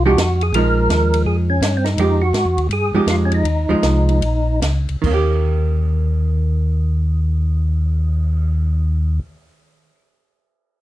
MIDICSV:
0, 0, Header, 1, 6, 480
1, 0, Start_track
1, 0, Tempo, 360360
1, 721, Time_signature, 4, 2, 24, 8
1, 3602, Tempo, 379747
1, 5522, Tempo, 410397
1, 6482, Tempo, 424929
1, 12996, End_track
2, 0, Start_track
2, 0, Title_t, "Tonewheel organ"
2, 0, Program_c, 0, 16
2, 78, Note_on_c, 0, 66, 92
2, 568, Note_off_c, 0, 66, 0
2, 568, Note_on_c, 0, 68, 85
2, 729, Note_on_c, 0, 70, 97
2, 734, Note_off_c, 0, 68, 0
2, 1630, Note_off_c, 0, 70, 0
2, 1683, Note_on_c, 0, 68, 81
2, 1822, Note_off_c, 0, 68, 0
2, 1994, Note_on_c, 0, 61, 97
2, 2360, Note_on_c, 0, 60, 69
2, 2361, Note_off_c, 0, 61, 0
2, 2456, Note_on_c, 0, 63, 85
2, 2473, Note_off_c, 0, 60, 0
2, 2952, Note_on_c, 0, 66, 101
2, 2956, Note_off_c, 0, 63, 0
2, 3558, Note_off_c, 0, 66, 0
2, 3631, Note_on_c, 0, 68, 86
2, 4051, Note_off_c, 0, 68, 0
2, 4099, Note_on_c, 0, 65, 69
2, 4176, Note_off_c, 0, 65, 0
2, 4296, Note_on_c, 0, 61, 56
2, 4394, Note_off_c, 0, 61, 0
2, 4411, Note_on_c, 0, 63, 80
2, 5965, Note_off_c, 0, 63, 0
2, 12996, End_track
3, 0, Start_track
3, 0, Title_t, "Hollow-body jazz guitar"
3, 0, Program_c, 1, 26
3, 75, Note_on_c, 1, 53, 60
3, 83, Note_on_c, 1, 56, 58
3, 83, Note_on_c, 1, 63, 61
3, 89, Note_on_c, 1, 67, 66
3, 226, Note_off_c, 1, 53, 0
3, 230, Note_off_c, 1, 56, 0
3, 230, Note_off_c, 1, 63, 0
3, 233, Note_off_c, 1, 67, 0
3, 739, Note_on_c, 1, 53, 50
3, 747, Note_on_c, 1, 56, 53
3, 753, Note_on_c, 1, 63, 56
3, 2065, Note_off_c, 1, 53, 0
3, 2069, Note_off_c, 1, 56, 0
3, 2072, Note_off_c, 1, 63, 0
3, 2656, Note_on_c, 1, 53, 44
3, 2658, Note_on_c, 1, 56, 44
3, 2670, Note_on_c, 1, 67, 54
3, 2674, Note_on_c, 1, 63, 46
3, 2925, Note_off_c, 1, 53, 0
3, 2927, Note_off_c, 1, 56, 0
3, 2932, Note_off_c, 1, 67, 0
3, 2934, Note_off_c, 1, 63, 0
3, 3907, Note_on_c, 1, 53, 50
3, 3915, Note_on_c, 1, 56, 61
3, 3922, Note_on_c, 1, 63, 60
3, 3922, Note_on_c, 1, 67, 58
3, 4510, Note_off_c, 1, 53, 0
3, 4514, Note_off_c, 1, 56, 0
3, 4518, Note_off_c, 1, 63, 0
3, 4518, Note_off_c, 1, 67, 0
3, 4849, Note_on_c, 1, 53, 65
3, 4864, Note_on_c, 1, 56, 73
3, 4867, Note_on_c, 1, 63, 73
3, 5484, Note_off_c, 1, 53, 0
3, 5492, Note_off_c, 1, 56, 0
3, 5493, Note_off_c, 1, 63, 0
3, 6451, Note_on_c, 1, 51, 49
3, 6505, Note_on_c, 1, 58, 50
3, 6553, Note_on_c, 1, 61, 46
3, 6589, Note_on_c, 1, 67, 57
3, 11965, Note_off_c, 1, 51, 0
3, 12018, Note_off_c, 1, 58, 0
3, 12049, Note_off_c, 1, 61, 0
3, 12067, Note_off_c, 1, 67, 0
3, 12996, End_track
4, 0, Start_track
4, 0, Title_t, "Tonewheel organ"
4, 0, Program_c, 2, 16
4, 0, Note_on_c, 2, 36, 70
4, 220, Note_off_c, 2, 36, 0
4, 225, Note_on_c, 2, 41, 79
4, 698, Note_off_c, 2, 41, 0
4, 702, Note_on_c, 2, 34, 78
4, 1175, Note_off_c, 2, 34, 0
4, 1194, Note_on_c, 2, 39, 86
4, 1661, Note_off_c, 2, 39, 0
4, 1670, Note_on_c, 2, 41, 75
4, 2139, Note_off_c, 2, 41, 0
4, 2144, Note_on_c, 2, 43, 81
4, 2616, Note_off_c, 2, 43, 0
4, 2633, Note_on_c, 2, 41, 77
4, 3101, Note_off_c, 2, 41, 0
4, 3107, Note_on_c, 2, 44, 82
4, 3263, Note_on_c, 2, 41, 53
4, 3268, Note_off_c, 2, 44, 0
4, 3426, Note_on_c, 2, 39, 62
4, 3432, Note_off_c, 2, 41, 0
4, 3582, Note_on_c, 2, 43, 77
4, 3583, Note_off_c, 2, 39, 0
4, 3871, Note_off_c, 2, 43, 0
4, 3892, Note_on_c, 2, 43, 36
4, 3978, Note_off_c, 2, 43, 0
4, 4056, Note_on_c, 2, 41, 75
4, 4521, Note_off_c, 2, 41, 0
4, 4526, Note_on_c, 2, 39, 75
4, 4823, Note_off_c, 2, 39, 0
4, 4840, Note_on_c, 2, 39, 34
4, 4930, Note_off_c, 2, 39, 0
4, 5018, Note_on_c, 2, 36, 86
4, 5503, Note_off_c, 2, 36, 0
4, 5513, Note_on_c, 2, 34, 73
4, 5976, Note_off_c, 2, 34, 0
4, 5984, Note_on_c, 2, 37, 78
4, 6280, Note_off_c, 2, 37, 0
4, 6302, Note_on_c, 2, 37, 33
4, 6391, Note_off_c, 2, 37, 0
4, 6473, Note_on_c, 2, 39, 83
4, 11173, Note_off_c, 2, 39, 0
4, 12996, End_track
5, 0, Start_track
5, 0, Title_t, "Cymbal swell"
5, 6786, Note_on_c, 9, 59, 38
5, 10214, Note_off_c, 9, 59, 0
5, 12996, End_track
6, 0, Start_track
6, 0, Title_t, "Drums"
6, 239, Note_on_c, 9, 38, 70
6, 241, Note_on_c, 9, 44, 62
6, 241, Note_on_c, 9, 51, 63
6, 373, Note_off_c, 9, 38, 0
6, 374, Note_off_c, 9, 44, 0
6, 374, Note_off_c, 9, 51, 0
6, 548, Note_on_c, 9, 51, 37
6, 681, Note_off_c, 9, 51, 0
6, 720, Note_on_c, 9, 51, 62
6, 853, Note_off_c, 9, 51, 0
6, 1198, Note_on_c, 9, 38, 54
6, 1200, Note_on_c, 9, 44, 39
6, 1200, Note_on_c, 9, 51, 52
6, 1332, Note_off_c, 9, 38, 0
6, 1333, Note_off_c, 9, 44, 0
6, 1333, Note_off_c, 9, 51, 0
6, 1512, Note_on_c, 9, 51, 52
6, 1645, Note_off_c, 9, 51, 0
6, 2161, Note_on_c, 9, 38, 65
6, 2162, Note_on_c, 9, 44, 53
6, 2162, Note_on_c, 9, 51, 69
6, 2294, Note_off_c, 9, 38, 0
6, 2296, Note_off_c, 9, 44, 0
6, 2296, Note_off_c, 9, 51, 0
6, 2469, Note_on_c, 9, 38, 44
6, 2471, Note_on_c, 9, 51, 37
6, 2602, Note_off_c, 9, 38, 0
6, 2604, Note_off_c, 9, 51, 0
6, 2635, Note_on_c, 9, 51, 60
6, 2769, Note_off_c, 9, 51, 0
6, 3117, Note_on_c, 9, 38, 51
6, 3119, Note_on_c, 9, 44, 48
6, 3119, Note_on_c, 9, 51, 51
6, 3251, Note_off_c, 9, 38, 0
6, 3252, Note_off_c, 9, 44, 0
6, 3252, Note_off_c, 9, 51, 0
6, 3433, Note_on_c, 9, 51, 37
6, 3567, Note_off_c, 9, 51, 0
6, 3605, Note_on_c, 9, 51, 53
6, 3732, Note_off_c, 9, 51, 0
6, 4068, Note_on_c, 9, 38, 64
6, 4070, Note_on_c, 9, 44, 55
6, 4070, Note_on_c, 9, 51, 58
6, 4195, Note_off_c, 9, 38, 0
6, 4196, Note_off_c, 9, 44, 0
6, 4196, Note_off_c, 9, 51, 0
6, 4374, Note_on_c, 9, 51, 40
6, 4500, Note_off_c, 9, 51, 0
6, 4545, Note_on_c, 9, 51, 51
6, 4672, Note_off_c, 9, 51, 0
6, 5023, Note_on_c, 9, 38, 58
6, 5024, Note_on_c, 9, 44, 50
6, 5024, Note_on_c, 9, 51, 52
6, 5149, Note_off_c, 9, 38, 0
6, 5151, Note_off_c, 9, 44, 0
6, 5151, Note_off_c, 9, 51, 0
6, 5349, Note_on_c, 9, 51, 38
6, 5475, Note_off_c, 9, 51, 0
6, 5519, Note_on_c, 9, 51, 53
6, 5636, Note_off_c, 9, 51, 0
6, 5987, Note_on_c, 9, 38, 60
6, 5988, Note_on_c, 9, 44, 57
6, 5988, Note_on_c, 9, 51, 64
6, 6104, Note_off_c, 9, 38, 0
6, 6105, Note_off_c, 9, 44, 0
6, 6105, Note_off_c, 9, 51, 0
6, 6297, Note_on_c, 9, 51, 34
6, 6414, Note_off_c, 9, 51, 0
6, 6475, Note_on_c, 9, 36, 58
6, 6476, Note_on_c, 9, 49, 62
6, 6588, Note_off_c, 9, 36, 0
6, 6589, Note_off_c, 9, 49, 0
6, 12996, End_track
0, 0, End_of_file